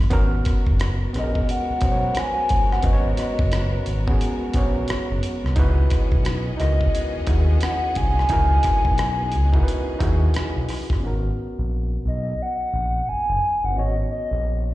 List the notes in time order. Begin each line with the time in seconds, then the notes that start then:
Already playing: E3 B3 D#4
0.01 cross-stick
0.10 G#1 B3 C#4 F#4 A#4, kick, closed hi-hat
0.45 kick, cross-stick, closed hi-hat
0.67 F#1, kick
0.80 cross-stick, closed hi-hat
1.13 A#1 B3 C#4 F#4 G#4, cross-stick, closed hi-hat
1.19 D#5
1.23 A#4
1.35 kick
1.49 F#5, closed hi-hat
1.70 B1
1.81 B1 B3 C#4 F#4, kick, closed hi-hat
1.85 C5
1.92 C#5
2.15 cross-stick, closed hi-hat
2.19 G#5
2.49 G1, kick, closed hi-hat
2.72 F#5, cross-stick
2.82 G#1 B3 C#4 F#4 B4 D#5, kick, closed hi-hat
2.93 C#5
3.17 D#5, cross-stick, closed hi-hat
3.39 F#1, kick
3.52 cross-stick, closed hi-hat
3.86 G#1, closed hi-hat
4.08 B3 C#4 F#4 G#4, kick
4.21 closed hi-hat
4.54 A#1 B3 C#4 F#4, kick, closed hi-hat
4.58 C#5
4.88 F#1, cross-stick, closed hi-hat
5.10 F#1
5.23 closed hi-hat
5.44 C2, cross-stick
5.56 C#2 B3 C#4 D#4 E4 F#4 G#4 B4 D#5, kick, closed hi-hat
5.90 kick, cross-stick, closed hi-hat
6.12 B1, kick
6.25 cross-stick, closed hi-hat
6.57 C#2 D#4 E4 F#4 A#4 D#5, cross-stick, closed hi-hat
6.81 kick
6.95 closed hi-hat
7.15 D#2
7.27 D#2 D#4 E4 F#4, kick, closed hi-hat
7.31 G#4
7.61 F#5, cross-stick, closed hi-hat
7.95 C2 G#5, kick, closed hi-hat
8.19 cross-stick
8.29 C#2 D#4 E4 F#4 A#4, kick, closed hi-hat
8.63 kick, cross-stick, closed hi-hat
8.85 B1, kick
8.98 cross-stick, closed hi-hat
9.32 C#2, closed hi-hat
9.53 D#4 E4 F#4 A#4, kick
9.63 B4
9.68 closed hi-hat
9.99 D#2 D#4 E4 F#4 G#4, kick, closed hi-hat
10.34 B1, cross-stick, closed hi-hat
10.56 B1
10.69 cross-stick, open hi-hat
10.90 G1, kick, cross-stick
11.00 G#1 B3 C#4
11.04 F#4 A#4
11.59 A#1
12.06 B1 D#5
12.42 F#5
12.73 A#1
13.07 F#1 G#5
13.29 F#1
13.64 G1 F#5
13.72 B3 C#4
13.76 G#1 F#4 C#5 D#5
14.11 D#5
14.31 A#1